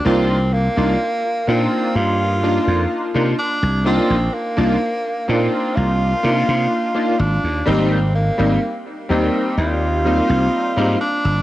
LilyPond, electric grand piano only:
\new Staff \with { instrumentName = "Electric grand piano" } { \time 4/4 \key c \minor \tempo 4 = 63 <bes d' ees' f'>16 r8 <bes d' ees' f'>16 r8 <bes d' ees' f'>4 <bes d' ees' f'>8. <bes d' ees' f'>16 r8 | <bes d' ees' f'>16 r8 <bes d' ees' f'>16 r8 <bes d' ees' f'>4 <bes d' ees' f'>8. <bes d' ees' f'>16 r8 | <g bes c' ees'>16 r8 <g bes c' ees'>16 r8 <g bes c' ees'>4 <g bes c' ees'>8. <g bes c' ees'>16 r8 | }